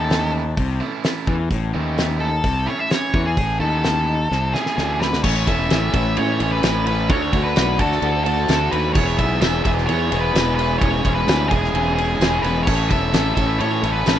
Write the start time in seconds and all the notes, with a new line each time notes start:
Already playing: D#2 D#3 E4 A4
0.10 E3 A3 C#4 E4, snare, open hi-hat
0.57 C2 C3, kick, open hi-hat
0.81 E3 A3 C#4 E4
1.04 E3 A3 C#4 E4, snare, open hi-hat
1.27 E2 E3, kick
1.51 A1 A2, kick, open hi-hat
1.74 D#2 D#3 E3 A3 C#4 E4
1.96 E3 A3 C#4 E4, snare, open hi-hat
2.20 A4
2.44 C2 C3, kick, open hi-hat
2.67 E3 A3 C#4 E4 C#5
2.79 E5
2.90 E3 A3 C#4 E4 C#5, snare, open hi-hat
3.14 E2 E3, kick
3.26 G#4
3.37 A1 A2, kick, open hi-hat
3.60 D#2 D#3 E3 A3 C#4 E4 A4
3.84 E3 A3 C#4 E4, snare, open hi-hat
4.31 C2 C3, snare
4.54 E3 A3 C#4 E4 G#4, snare
4.66 snare
4.77 D2 D3 E3 A3 C#4 E4, snare
5.00 B4, snare
5.13 snare
5.23 A1 A2 E3 A3 C#4 E4 C#5, kick, crash
5.47 E1 A2 E3 A3 C#4 E4 E5, kick, ride
5.70 A1 A2 E3 A3 C#4 E4, snare, ride, tambourine
5.94 A1 A2 E3 A3 C#4 E4 E5, kick, ride
6.17 A2 E3 A3 C#4 E4 C#5, ride
6.40 A1 A2 E3 A3 C#4 E4, ride
6.52 B4
6.63 A1 A2 E3 A3 C#4 E4, snare, ride, tambourine
6.86 A2 E3 A3 C#4 E4 B4, ride
7.10 D2 D3 A3 D4 F#4 C#5, kick, ride
7.33 D2 D3 A3 D4 F#4, kick, ride
7.44 B4
7.56 B1 D3 A3 D4 F#4, snare, ride, tambourine
7.78 D2 D3 A3 D4 F#4 A4, kick, ride
7.92 snare
8.02 D2 D3 A3 D4 F#4, ride
8.24 D3 A3 D4 F#4 A4, ride
8.48 D2 D3 A3 D4 F#4, snare, ride, tambourine
8.71 D#2 D3 A3 D4 F#4 B4, ride
8.94 E1 E2 B2 E3 G#3 B3 E4 G#4 C#5, kick, crash
9.18 B1 E2 B2 E3 G#3 B3 E4 G#4 E5, kick, ride
9.41 E1 E2 B2 E3 G#3 B3 E4 G#4 E5, snare, ride, tambourine
9.64 E1 E2 B2 E3 G#3 B3 E4 G#4 E5, kick, ride
9.78 snare
9.87 E2 B2 E3 G#3 B3 E4 G#4 C#5, ride
10.11 E1 E2 B2 E3 G#3 B3 E4 G#4, ride
10.20 B4
10.35 E1 E2 B2 E3 G#3 B3 E4 G#4, snare, ride, tambourine
10.55 E2 B2 E3 G#3 G#4 B4, ride
10.60 B3 E4
10.78 E1 E3 G#4 C#5, kick, ride
10.83 G#3 C#4 E4
11.05 E1 E3 G#3 C#4 E4 G#4, kick, ride
11.15 B4
11.27 D2 E3 G#3 C#4 E4 G#4, snare, ride, tambourine
11.48 E1 E3 G#3 G#4, kick, ride
11.52 C#4 E4 G#4
11.64 snare
11.74 E1 E3 G#3 C#4 E4 G#4, ride
11.95 E3 G#3 C#4 G#4, ride
12.00 E4
12.20 E1 E3 G#3 C#4 E4 G#4, snare, ride, tambourine
12.42 E1 E3 G#3 C#4 E4 G#4 B4, ride
12.63 A2 C#5
12.67 A1 E3 A3 C#4 E4 A4, kick, crash
12.89 E1 A2 E3 A3 C#4 E4 A4 E5, kick, ride
13.14 A1 A2 E3 A3 C#4 E4 A4, snare, ride, tambourine
13.35 A1 A2 E3 A3 C#4 E4 A4 E5, kick, ride
13.59 A2 E3 A3 C#4 E4 A4 C#5, ride
13.83 A1 A2 E3 A3 C#4 E4 A4, ride
13.93 B4
14.06 A1 A2 E3 A3 C#4 E4 A4, snare, ride, tambourine